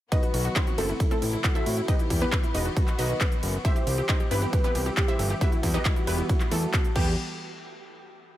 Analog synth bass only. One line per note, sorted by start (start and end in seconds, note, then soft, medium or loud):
0.34 0.49 B1 loud
0.78 0.93 F#1 loud
1.22 1.37 A1 medium
1.66 1.81 A2 loud
2.10 2.25 E2 loud
2.55 2.70 E1 loud
2.99 3.14 B1 medium
3.43 3.58 F#1 loud
3.87 4.02 C2 loud
4.31 4.46 G1 loud
4.75 4.90 C2 medium
5.19 5.34 G1 loud
5.63 5.78 E2 loud
6.07 6.22 E1 loud
6.52 6.66 E2 medium
6.96 7.16 E2 loud